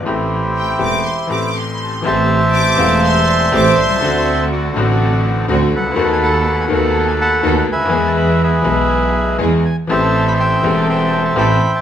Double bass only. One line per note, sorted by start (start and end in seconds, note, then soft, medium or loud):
0.06 0.76 A1 medium
0.82 1.02 E1 medium
2.05 2.76 A1 loud
2.79 3.50 E1 medium
3.54 3.74 A1 loud
3.79 4.03 C2 medium
4.03 4.73 D2 loud
4.76 5.46 A1 loud
5.49 5.70 D2 loud
5.75 5.99 C#2 medium
6.00 6.69 D#2 loud
6.72 7.42 D#2 medium
7.45 7.66 D#2 loud
7.71 7.94 D2 medium
7.94 8.63 E2 loud
8.67 9.37 B1 medium
9.42 9.62 E2 loud
9.90 10.60 A1 medium
10.64 11.33 E1 medium
11.36 11.57 A1 loud